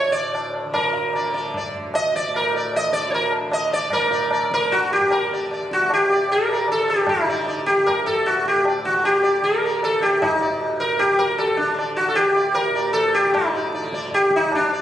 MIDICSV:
0, 0, Header, 1, 4, 480
1, 0, Start_track
1, 0, Tempo, 395517
1, 911, Time_signature, 4, 2, 24, 8
1, 9067, Tempo, 391134
1, 18079, End_track
2, 0, Start_track
2, 0, Title_t, "Sitar"
2, 0, Program_c, 0, 104
2, 0, Note_on_c, 0, 73, 90
2, 147, Note_on_c, 0, 74, 95
2, 175, Note_off_c, 0, 73, 0
2, 395, Note_off_c, 0, 74, 0
2, 409, Note_on_c, 0, 74, 37
2, 643, Note_off_c, 0, 74, 0
2, 893, Note_on_c, 0, 70, 72
2, 1401, Note_on_c, 0, 74, 39
2, 1576, Note_off_c, 0, 70, 0
2, 1610, Note_off_c, 0, 74, 0
2, 1625, Note_on_c, 0, 74, 36
2, 1853, Note_off_c, 0, 74, 0
2, 1906, Note_on_c, 0, 74, 34
2, 2115, Note_off_c, 0, 74, 0
2, 2366, Note_on_c, 0, 75, 101
2, 2609, Note_off_c, 0, 75, 0
2, 2618, Note_on_c, 0, 74, 86
2, 2832, Note_off_c, 0, 74, 0
2, 2864, Note_on_c, 0, 70, 71
2, 3075, Note_off_c, 0, 70, 0
2, 3107, Note_on_c, 0, 74, 35
2, 3317, Note_off_c, 0, 74, 0
2, 3353, Note_on_c, 0, 75, 94
2, 3551, Note_off_c, 0, 75, 0
2, 3556, Note_on_c, 0, 74, 83
2, 3743, Note_off_c, 0, 74, 0
2, 3767, Note_on_c, 0, 73, 50
2, 3809, Note_off_c, 0, 73, 0
2, 3813, Note_on_c, 0, 70, 66
2, 4029, Note_off_c, 0, 70, 0
2, 4286, Note_on_c, 0, 75, 87
2, 4526, Note_off_c, 0, 75, 0
2, 4531, Note_on_c, 0, 74, 85
2, 4763, Note_off_c, 0, 74, 0
2, 4769, Note_on_c, 0, 70, 86
2, 4777, Note_on_c, 0, 74, 41
2, 4981, Note_off_c, 0, 74, 0
2, 4996, Note_on_c, 0, 74, 39
2, 5220, Note_off_c, 0, 74, 0
2, 5249, Note_on_c, 0, 74, 39
2, 5434, Note_off_c, 0, 70, 0
2, 5466, Note_off_c, 0, 74, 0
2, 5506, Note_on_c, 0, 70, 98
2, 5730, Note_on_c, 0, 66, 91
2, 5738, Note_off_c, 0, 70, 0
2, 5970, Note_off_c, 0, 66, 0
2, 5980, Note_on_c, 0, 67, 89
2, 6209, Note_on_c, 0, 70, 86
2, 6214, Note_off_c, 0, 67, 0
2, 6426, Note_off_c, 0, 70, 0
2, 6468, Note_on_c, 0, 74, 40
2, 6675, Note_off_c, 0, 74, 0
2, 6710, Note_on_c, 0, 74, 40
2, 6916, Note_off_c, 0, 74, 0
2, 6955, Note_on_c, 0, 66, 90
2, 7180, Note_off_c, 0, 66, 0
2, 7204, Note_on_c, 0, 67, 100
2, 7424, Note_on_c, 0, 74, 41
2, 7632, Note_off_c, 0, 74, 0
2, 7664, Note_on_c, 0, 70, 102
2, 7670, Note_off_c, 0, 67, 0
2, 7915, Note_on_c, 0, 74, 42
2, 8116, Note_off_c, 0, 74, 0
2, 8140, Note_off_c, 0, 70, 0
2, 8151, Note_on_c, 0, 69, 101
2, 8371, Note_on_c, 0, 67, 96
2, 8375, Note_off_c, 0, 69, 0
2, 8601, Note_off_c, 0, 67, 0
2, 8606, Note_on_c, 0, 63, 90
2, 8846, Note_on_c, 0, 74, 39
2, 9051, Note_off_c, 0, 74, 0
2, 9066, Note_on_c, 0, 74, 45
2, 9289, Note_off_c, 0, 74, 0
2, 9298, Note_off_c, 0, 63, 0
2, 9303, Note_on_c, 0, 67, 96
2, 9549, Note_on_c, 0, 70, 98
2, 9552, Note_off_c, 0, 67, 0
2, 9787, Note_off_c, 0, 70, 0
2, 9792, Note_on_c, 0, 69, 102
2, 10038, Note_off_c, 0, 69, 0
2, 10039, Note_on_c, 0, 66, 90
2, 10281, Note_off_c, 0, 66, 0
2, 10302, Note_on_c, 0, 67, 80
2, 10511, Note_off_c, 0, 67, 0
2, 10547, Note_on_c, 0, 74, 41
2, 10754, Note_off_c, 0, 74, 0
2, 10762, Note_on_c, 0, 66, 91
2, 11002, Note_off_c, 0, 66, 0
2, 11007, Note_on_c, 0, 67, 103
2, 11224, Note_on_c, 0, 74, 42
2, 11452, Note_off_c, 0, 74, 0
2, 11479, Note_on_c, 0, 70, 101
2, 11495, Note_off_c, 0, 67, 0
2, 11744, Note_on_c, 0, 74, 43
2, 11953, Note_off_c, 0, 74, 0
2, 11968, Note_off_c, 0, 70, 0
2, 11973, Note_on_c, 0, 69, 97
2, 12202, Note_on_c, 0, 67, 98
2, 12211, Note_off_c, 0, 69, 0
2, 12434, Note_off_c, 0, 67, 0
2, 12439, Note_on_c, 0, 63, 98
2, 12676, Note_on_c, 0, 74, 38
2, 12899, Note_off_c, 0, 74, 0
2, 13152, Note_on_c, 0, 70, 98
2, 13179, Note_off_c, 0, 63, 0
2, 13388, Note_on_c, 0, 67, 97
2, 13401, Note_off_c, 0, 70, 0
2, 13626, Note_on_c, 0, 70, 99
2, 13639, Note_off_c, 0, 67, 0
2, 13854, Note_off_c, 0, 70, 0
2, 13868, Note_on_c, 0, 69, 94
2, 14094, Note_off_c, 0, 69, 0
2, 14097, Note_on_c, 0, 62, 75
2, 14328, Note_off_c, 0, 62, 0
2, 14358, Note_on_c, 0, 74, 41
2, 14580, Note_off_c, 0, 74, 0
2, 14582, Note_on_c, 0, 66, 89
2, 14727, Note_on_c, 0, 69, 71
2, 14758, Note_off_c, 0, 66, 0
2, 14814, Note_on_c, 0, 67, 107
2, 14818, Note_off_c, 0, 69, 0
2, 15065, Note_on_c, 0, 74, 41
2, 15291, Note_on_c, 0, 70, 111
2, 15292, Note_off_c, 0, 74, 0
2, 15318, Note_off_c, 0, 67, 0
2, 15543, Note_on_c, 0, 74, 45
2, 15761, Note_off_c, 0, 70, 0
2, 15766, Note_on_c, 0, 69, 107
2, 15770, Note_off_c, 0, 74, 0
2, 16026, Note_off_c, 0, 69, 0
2, 16030, Note_on_c, 0, 67, 98
2, 16261, Note_off_c, 0, 67, 0
2, 16266, Note_on_c, 0, 63, 87
2, 16524, Note_on_c, 0, 74, 39
2, 16740, Note_off_c, 0, 74, 0
2, 16767, Note_on_c, 0, 74, 44
2, 16936, Note_off_c, 0, 63, 0
2, 16981, Note_off_c, 0, 74, 0
2, 17002, Note_on_c, 0, 74, 42
2, 17218, Note_off_c, 0, 74, 0
2, 17255, Note_on_c, 0, 67, 111
2, 17486, Note_off_c, 0, 67, 0
2, 17520, Note_on_c, 0, 63, 99
2, 17738, Note_off_c, 0, 63, 0
2, 17755, Note_on_c, 0, 62, 83
2, 17953, Note_off_c, 0, 62, 0
2, 17971, Note_on_c, 0, 74, 43
2, 18079, Note_off_c, 0, 74, 0
2, 18079, End_track
3, 0, Start_track
3, 0, Title_t, "Tanpura"
3, 0, Program_c, 1, 104
3, 0, Note_on_c, 1, 38, 59
3, 0, Note_on_c, 1, 50, 59
3, 103, Note_on_c, 1, 45, 62
3, 776, Note_off_c, 1, 50, 0
3, 776, Note_on_c, 1, 50, 60
3, 1440, Note_off_c, 1, 50, 0
3, 1440, Note_on_c, 1, 50, 57
3, 2114, Note_off_c, 1, 38, 0
3, 2119, Note_on_c, 1, 38, 61
3, 2767, Note_off_c, 1, 45, 0
3, 2772, Note_on_c, 1, 45, 60
3, 3450, Note_off_c, 1, 50, 0
3, 3450, Note_on_c, 1, 50, 57
3, 4139, Note_off_c, 1, 50, 0
3, 4139, Note_on_c, 1, 50, 58
3, 4768, Note_off_c, 1, 45, 0
3, 4773, Note_on_c, 1, 45, 64
3, 5451, Note_off_c, 1, 50, 0
3, 5451, Note_on_c, 1, 50, 62
3, 6107, Note_off_c, 1, 50, 0
3, 6107, Note_on_c, 1, 50, 61
3, 6757, Note_off_c, 1, 38, 0
3, 6762, Note_on_c, 1, 38, 66
3, 7414, Note_off_c, 1, 45, 0
3, 7419, Note_on_c, 1, 45, 64
3, 8089, Note_off_c, 1, 50, 0
3, 8089, Note_on_c, 1, 50, 62
3, 8768, Note_off_c, 1, 50, 0
3, 8768, Note_on_c, 1, 50, 72
3, 9426, Note_off_c, 1, 38, 0
3, 9430, Note_on_c, 1, 38, 66
3, 10108, Note_off_c, 1, 45, 0
3, 10113, Note_on_c, 1, 45, 69
3, 10786, Note_off_c, 1, 50, 0
3, 10786, Note_on_c, 1, 50, 65
3, 11446, Note_off_c, 1, 50, 0
3, 11446, Note_on_c, 1, 50, 62
3, 12129, Note_off_c, 1, 38, 0
3, 12133, Note_on_c, 1, 38, 65
3, 12786, Note_off_c, 1, 45, 0
3, 12791, Note_on_c, 1, 45, 66
3, 13444, Note_off_c, 1, 50, 0
3, 13444, Note_on_c, 1, 50, 64
3, 14137, Note_off_c, 1, 50, 0
3, 14137, Note_on_c, 1, 50, 65
3, 14786, Note_off_c, 1, 38, 0
3, 14791, Note_on_c, 1, 38, 63
3, 15470, Note_off_c, 1, 45, 0
3, 15475, Note_on_c, 1, 45, 68
3, 16136, Note_off_c, 1, 50, 0
3, 16136, Note_on_c, 1, 50, 68
3, 16799, Note_off_c, 1, 50, 0
3, 16799, Note_on_c, 1, 50, 69
3, 17470, Note_off_c, 1, 38, 0
3, 17475, Note_on_c, 1, 38, 72
3, 18079, Note_off_c, 1, 38, 0
3, 18079, Note_off_c, 1, 45, 0
3, 18079, Note_off_c, 1, 50, 0
3, 18079, End_track
4, 0, Start_track
4, 0, Title_t, "Tabla"
4, 187, Note_on_c, 9, 60, 58
4, 308, Note_off_c, 9, 60, 0
4, 422, Note_on_c, 9, 60, 74
4, 543, Note_off_c, 9, 60, 0
4, 652, Note_on_c, 9, 60, 60
4, 774, Note_off_c, 9, 60, 0
4, 895, Note_on_c, 9, 60, 102
4, 895, Note_on_c, 9, 64, 94
4, 1017, Note_off_c, 9, 60, 0
4, 1017, Note_off_c, 9, 64, 0
4, 1130, Note_on_c, 9, 62, 76
4, 1252, Note_off_c, 9, 62, 0
4, 1376, Note_on_c, 9, 60, 76
4, 1498, Note_off_c, 9, 60, 0
4, 1626, Note_on_c, 9, 37, 58
4, 1747, Note_off_c, 9, 37, 0
4, 1870, Note_on_c, 9, 60, 71
4, 1870, Note_on_c, 9, 64, 67
4, 1992, Note_off_c, 9, 60, 0
4, 1992, Note_off_c, 9, 64, 0
4, 2115, Note_on_c, 9, 64, 52
4, 2236, Note_off_c, 9, 64, 0
4, 2353, Note_on_c, 9, 60, 75
4, 2474, Note_off_c, 9, 60, 0
4, 2595, Note_on_c, 9, 37, 61
4, 2717, Note_off_c, 9, 37, 0
4, 2841, Note_on_c, 9, 60, 73
4, 2962, Note_off_c, 9, 60, 0
4, 3078, Note_on_c, 9, 62, 58
4, 3200, Note_off_c, 9, 62, 0
4, 3318, Note_on_c, 9, 60, 73
4, 3439, Note_off_c, 9, 60, 0
4, 3553, Note_on_c, 9, 37, 58
4, 3668, Note_on_c, 9, 62, 59
4, 3674, Note_off_c, 9, 37, 0
4, 3786, Note_on_c, 9, 63, 70
4, 3790, Note_off_c, 9, 62, 0
4, 3908, Note_off_c, 9, 63, 0
4, 4023, Note_on_c, 9, 60, 59
4, 4144, Note_off_c, 9, 60, 0
4, 4266, Note_on_c, 9, 60, 77
4, 4387, Note_off_c, 9, 60, 0
4, 4505, Note_on_c, 9, 60, 55
4, 4626, Note_off_c, 9, 60, 0
4, 4739, Note_on_c, 9, 60, 112
4, 4739, Note_on_c, 9, 64, 99
4, 4860, Note_off_c, 9, 60, 0
4, 4860, Note_off_c, 9, 64, 0
4, 4984, Note_on_c, 9, 62, 90
4, 5105, Note_off_c, 9, 62, 0
4, 5226, Note_on_c, 9, 60, 86
4, 5348, Note_off_c, 9, 60, 0
4, 5478, Note_on_c, 9, 37, 68
4, 5600, Note_off_c, 9, 37, 0
4, 5724, Note_on_c, 9, 60, 80
4, 5724, Note_on_c, 9, 64, 71
4, 5845, Note_off_c, 9, 60, 0
4, 5845, Note_off_c, 9, 64, 0
4, 5951, Note_on_c, 9, 62, 66
4, 6071, Note_on_c, 9, 64, 58
4, 6072, Note_off_c, 9, 62, 0
4, 6192, Note_off_c, 9, 64, 0
4, 6197, Note_on_c, 9, 60, 83
4, 6318, Note_off_c, 9, 60, 0
4, 6448, Note_on_c, 9, 37, 67
4, 6569, Note_off_c, 9, 37, 0
4, 6689, Note_on_c, 9, 60, 83
4, 6810, Note_off_c, 9, 60, 0
4, 6933, Note_on_c, 9, 37, 68
4, 7047, Note_on_c, 9, 62, 66
4, 7054, Note_off_c, 9, 37, 0
4, 7159, Note_on_c, 9, 60, 86
4, 7168, Note_off_c, 9, 62, 0
4, 7281, Note_off_c, 9, 60, 0
4, 7395, Note_on_c, 9, 62, 65
4, 7516, Note_off_c, 9, 62, 0
4, 7630, Note_on_c, 9, 63, 83
4, 7752, Note_off_c, 9, 63, 0
4, 7870, Note_on_c, 9, 60, 68
4, 7992, Note_off_c, 9, 60, 0
4, 8103, Note_on_c, 9, 60, 82
4, 8224, Note_off_c, 9, 60, 0
4, 8356, Note_on_c, 9, 60, 66
4, 8478, Note_off_c, 9, 60, 0
4, 8576, Note_on_c, 9, 60, 114
4, 8576, Note_on_c, 9, 64, 103
4, 8697, Note_off_c, 9, 60, 0
4, 8697, Note_off_c, 9, 64, 0
4, 8821, Note_on_c, 9, 62, 86
4, 8942, Note_off_c, 9, 62, 0
4, 9058, Note_on_c, 9, 62, 80
4, 9180, Note_off_c, 9, 62, 0
4, 9181, Note_on_c, 9, 62, 60
4, 9303, Note_off_c, 9, 62, 0
4, 9313, Note_on_c, 9, 37, 67
4, 9433, Note_on_c, 9, 62, 65
4, 9435, Note_off_c, 9, 37, 0
4, 9556, Note_off_c, 9, 62, 0
4, 9559, Note_on_c, 9, 60, 84
4, 9559, Note_on_c, 9, 64, 76
4, 9682, Note_off_c, 9, 60, 0
4, 9682, Note_off_c, 9, 64, 0
4, 9805, Note_on_c, 9, 64, 63
4, 9927, Note_off_c, 9, 64, 0
4, 10035, Note_on_c, 9, 60, 86
4, 10158, Note_off_c, 9, 60, 0
4, 10275, Note_on_c, 9, 37, 66
4, 10398, Note_off_c, 9, 37, 0
4, 10517, Note_on_c, 9, 60, 88
4, 10640, Note_off_c, 9, 60, 0
4, 10756, Note_on_c, 9, 37, 68
4, 10871, Note_on_c, 9, 62, 68
4, 10879, Note_off_c, 9, 37, 0
4, 10993, Note_on_c, 9, 60, 86
4, 10994, Note_off_c, 9, 62, 0
4, 11115, Note_off_c, 9, 60, 0
4, 11235, Note_on_c, 9, 62, 67
4, 11358, Note_off_c, 9, 62, 0
4, 11470, Note_on_c, 9, 63, 82
4, 11592, Note_off_c, 9, 63, 0
4, 11720, Note_on_c, 9, 60, 70
4, 11843, Note_off_c, 9, 60, 0
4, 11962, Note_on_c, 9, 60, 81
4, 12085, Note_off_c, 9, 60, 0
4, 12198, Note_on_c, 9, 60, 68
4, 12320, Note_off_c, 9, 60, 0
4, 12441, Note_on_c, 9, 60, 115
4, 12441, Note_on_c, 9, 64, 99
4, 12564, Note_off_c, 9, 60, 0
4, 12564, Note_off_c, 9, 64, 0
4, 12672, Note_on_c, 9, 62, 91
4, 12795, Note_off_c, 9, 62, 0
4, 12921, Note_on_c, 9, 60, 87
4, 13043, Note_off_c, 9, 60, 0
4, 13164, Note_on_c, 9, 37, 66
4, 13286, Note_off_c, 9, 37, 0
4, 13403, Note_on_c, 9, 60, 88
4, 13403, Note_on_c, 9, 64, 77
4, 13526, Note_off_c, 9, 60, 0
4, 13526, Note_off_c, 9, 64, 0
4, 13632, Note_on_c, 9, 64, 61
4, 13755, Note_off_c, 9, 64, 0
4, 13871, Note_on_c, 9, 60, 85
4, 13993, Note_off_c, 9, 60, 0
4, 14114, Note_on_c, 9, 37, 65
4, 14237, Note_off_c, 9, 37, 0
4, 14363, Note_on_c, 9, 60, 83
4, 14486, Note_off_c, 9, 60, 0
4, 14593, Note_on_c, 9, 62, 65
4, 14716, Note_off_c, 9, 62, 0
4, 14823, Note_on_c, 9, 60, 83
4, 14945, Note_off_c, 9, 60, 0
4, 15072, Note_on_c, 9, 62, 70
4, 15195, Note_off_c, 9, 62, 0
4, 15311, Note_on_c, 9, 63, 85
4, 15434, Note_off_c, 9, 63, 0
4, 15550, Note_on_c, 9, 60, 65
4, 15672, Note_off_c, 9, 60, 0
4, 15793, Note_on_c, 9, 60, 86
4, 15916, Note_off_c, 9, 60, 0
4, 16043, Note_on_c, 9, 60, 70
4, 16166, Note_off_c, 9, 60, 0
4, 16276, Note_on_c, 9, 60, 109
4, 16276, Note_on_c, 9, 64, 105
4, 16399, Note_off_c, 9, 60, 0
4, 16399, Note_off_c, 9, 64, 0
4, 16507, Note_on_c, 9, 62, 90
4, 16630, Note_off_c, 9, 62, 0
4, 16741, Note_on_c, 9, 62, 84
4, 16863, Note_off_c, 9, 62, 0
4, 16863, Note_on_c, 9, 62, 64
4, 16986, Note_off_c, 9, 62, 0
4, 16986, Note_on_c, 9, 37, 69
4, 17108, Note_off_c, 9, 37, 0
4, 17111, Note_on_c, 9, 62, 67
4, 17215, Note_on_c, 9, 63, 88
4, 17215, Note_on_c, 9, 64, 72
4, 17234, Note_off_c, 9, 62, 0
4, 17337, Note_off_c, 9, 63, 0
4, 17337, Note_off_c, 9, 64, 0
4, 17455, Note_on_c, 9, 37, 87
4, 17577, Note_off_c, 9, 37, 0
4, 17712, Note_on_c, 9, 60, 106
4, 17712, Note_on_c, 9, 64, 90
4, 17835, Note_off_c, 9, 60, 0
4, 17835, Note_off_c, 9, 64, 0
4, 18079, End_track
0, 0, End_of_file